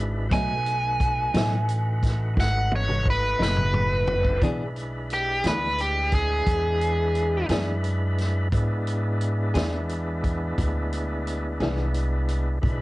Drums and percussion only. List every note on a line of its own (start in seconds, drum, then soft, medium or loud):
0.31 kick loud
0.31 closed hi-hat medium
0.66 closed hi-hat soft
1.00 kick medium
1.00 closed hi-hat medium
1.34 snare medium
1.34 closed hi-hat medium
1.69 closed hi-hat medium
2.03 kick medium
2.03 snare soft
2.03 closed hi-hat medium
2.37 kick medium
2.37 snare medium
2.72 high tom medium
2.89 mid tom medium
3.06 kick medium
3.42 snare medium
3.56 mid tom medium
3.74 mid tom medium
4.07 floor tom medium
4.25 kick medium
4.42 kick medium
4.42 closed hi-hat medium
4.76 closed hi-hat soft
5.10 closed hi-hat medium
5.44 snare medium
5.44 closed hi-hat medium
5.78 closed hi-hat soft
6.12 kick medium
6.12 closed hi-hat medium
6.46 kick medium
6.46 closed hi-hat medium
6.81 closed hi-hat soft
7.15 closed hi-hat soft
7.49 snare medium
7.49 closed hi-hat medium
7.84 closed hi-hat medium
8.18 snare soft
8.18 closed hi-hat medium
8.52 kick medium
8.52 closed hi-hat medium
8.87 closed hi-hat medium
9.21 closed hi-hat medium
9.55 snare medium
9.55 closed hi-hat medium
9.89 closed hi-hat soft
10.24 kick medium
10.24 closed hi-hat medium
10.58 kick medium
10.58 closed hi-hat medium
10.93 closed hi-hat medium
11.27 closed hi-hat medium
11.60 snare medium
11.60 closed hi-hat medium
11.94 closed hi-hat medium
12.28 closed hi-hat soft
12.63 kick medium
12.63 closed hi-hat medium